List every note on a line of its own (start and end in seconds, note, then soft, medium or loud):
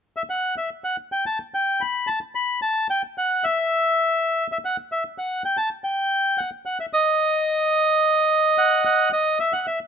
0.17 0.22 E5 medium
0.30 0.55 F#5 medium
0.58 0.70 E5 medium
0.84 0.97 F#5 medium
1.12 1.25 G5 medium
1.26 1.38 A5 medium
1.54 1.82 G5 medium
1.81 2.09 B5 medium
2.07 2.19 A5 medium
2.35 2.60 B5 medium
2.62 2.87 A5 medium
2.90 3.02 G5 medium
3.18 3.45 F#5 medium
3.44 4.47 E5 medium
4.52 4.58 E5 medium
4.65 4.77 F#5 medium
4.92 5.04 E5 medium
5.18 5.43 F#5 medium
5.45 5.57 G5 medium
5.57 5.69 A5 medium
5.84 6.40 G5 medium
6.38 6.50 F#5 medium
6.66 6.78 F#5 medium
6.80 6.86 E5 medium
6.93 9.09 D#5 medium
8.58 8.84 F#5 medium
8.85 9.11 F#5 medium
9.13 9.39 D#5 medium
9.40 9.53 E5 medium
9.53 9.66 F#5 medium
9.67 9.79 E5 medium